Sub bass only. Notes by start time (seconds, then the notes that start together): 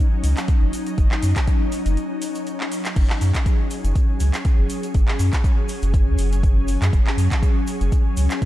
0.23 C#2
0.62 F#1
0.98 F#1
1.23 F#2
1.86 F#1
2.96 F#1
3.21 F#2
3.84 F#1
4.20 C#2
4.58 F#1
4.95 F#1
5.19 F#2
5.83 F#1
6.07 F#2
6.18 F#1
6.81 F#2
6.93 F#1
7.17 F#2
7.81 F#1
8.17 C#2